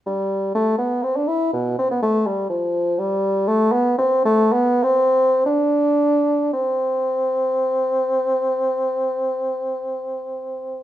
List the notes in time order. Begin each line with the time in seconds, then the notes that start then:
0.06 G3
0.55 A3
0.78 B3
1.03 C4
1.16 D4
1.27 E4
1.53 B2
1.78 C4
1.91 B3
2.03 A3
2.26 G3
2.50 F3
2.99 G3
3.48 A3
3.72 B3
3.98 C4
4.25 A3
4.52 B3
4.83 C4
5.46 D4
6.53 C4